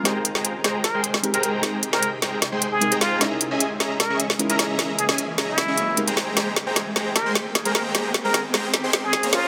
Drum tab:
HH |x-x-x-x-x-x-xxx-|x-x-x-x-x-x-xxx-|x-x-x-x-x-x-xxx-|x-x-x-x-x-x-xxx-|
SD |o--o--o-o--o----|o--o--o-o-----o-|o-----o-o--o--o-|o--o--o-o-----o-|

HH |x-x-x-x-x-x-xxx-|x-x-x-x-x-x-xxx-|
SD |o-o-o-o-o-o-o-o-|o-o-o-o-o-o-o-o-|